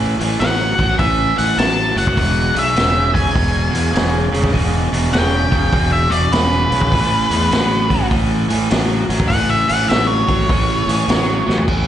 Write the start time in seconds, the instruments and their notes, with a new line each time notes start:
Already playing: fingered electric bass A1, overdriven electric guitar A2 E3
0.19 fingered electric bass A1, overdriven electric guitar A2 E3, open hi-hat
0.39 fingered electric bass A1, overdriven electric guitar A2 F#3, lead electric guitar F#5, snare, open hi-hat
0.78 fingered electric bass A1, overdriven electric guitar A2 F#3, kick, open hi-hat
0.98 fingered electric bass A1, overdriven electric guitar A2 E3, lead electric guitar E5, kick, open hi-hat
1.36 fingered electric bass A1, overdriven electric guitar A2 E3, lead electric guitar F#5, open hi-hat
1.56 fingered electric bass A1, overdriven electric guitar A2 F#3, lead electric guitar A5, snare, open hi-hat
1.94 fingered electric bass F#1, overdriven electric guitar A2 F#3, lead electric guitar F#5, open hi-hat
2.07 kick
2.15 fingered electric bass E1, overdriven electric guitar E2 B2, kick, open hi-hat
2.54 fingered electric bass B1, overdriven electric guitar E2 B2, open hi-hat
2.59 lead electric guitar E5
2.75 fingered electric bass E1, overdriven electric guitar E2 C#3, snare, open hi-hat
3.13 overdriven electric guitar E2 C#3, lead electric guitar G#5, kick, open hi-hat
3.33 fingered electric bass E1, overdriven electric guitar E2 B2, kick, open hi-hat
3.71 overdriven electric guitar E2 B2, fingered electric bass E2, open hi-hat
3.92 fingered electric bass E1, overdriven electric guitar E2 C#3, open hi-hat
3.97 snare
4.32 fingered electric bass E1, overdriven electric guitar E2 C#3, open hi-hat
4.44 kick, snare
4.53 fingered electric bass E1, overdriven electric guitar E2 B2, kick, open hi-hat
4.92 fingered electric bass E1, overdriven electric guitar E2 B2, open hi-hat
5.12 fingered electric bass E1, overdriven electric guitar E2 C#3, lead electric guitar G5, snare, open hi-hat
5.50 fingered electric bass E1, overdriven electric guitar E2 C#3, kick, open hi-hat
5.72 fingered electric bass E1, overdriven electric guitar E2 B2, kick, open hi-hat
5.93 lead electric guitar E5
6.10 fingered electric bass E1, overdriven electric guitar E2 B2, lead electric guitar D5, open hi-hat
6.31 fingered electric bass E1, overdriven electric guitar E2 C#3, lead electric guitar B4, snare, open hi-hat
6.70 fingered electric bass B1, overdriven electric guitar E2 C#3, open hi-hat
6.81 kick
6.91 fingered electric bass A1, overdriven electric guitar A2 E3, kick, open hi-hat
7.30 fingered electric bass E2, overdriven electric guitar A2 E3, open hi-hat
7.50 fingered electric bass A1, overdriven electric guitar A2 F#3, snare, open hi-hat
7.89 overdriven electric guitar A2 F#3, kick, open hi-hat
8.09 fingered electric bass A1, overdriven electric guitar A2 E3, kick, open hi-hat
8.48 overdriven electric guitar A2 E3, fingered electric bass A2, open hi-hat
8.70 fingered electric bass A1, overdriven electric guitar A2 F#3, snare, open hi-hat
9.09 fingered electric bass A1, overdriven electric guitar A2 F#3, open hi-hat
9.20 kick
9.28 fingered electric bass A1, overdriven electric guitar A2 E3, lead electric guitar F#5, kick, open hi-hat
9.50 lead electric guitar E5
9.68 fingered electric bass A1, overdriven electric guitar A2 E3, lead electric guitar F#5, open hi-hat
9.88 fingered electric bass A1, overdriven electric guitar A2 F#3, lead electric guitar E5, snare, open hi-hat
10.07 lead electric guitar C#5
10.27 fingered electric bass A1, overdriven electric guitar A2 F#3, kick, open hi-hat
10.48 fingered electric bass A1, overdriven electric guitar A2 E3, kick, open hi-hat
10.87 fingered electric bass A1, overdriven electric guitar A2 E3, open hi-hat
11.08 fingered electric bass A1, overdriven electric guitar A2 F#3, snare, open hi-hat
11.46 fingered electric bass A1, overdriven electric guitar A2 F#3, snare
11.57 floor tom
11.68 fingered electric bass A1, overdriven electric guitar A2 E3, kick, crash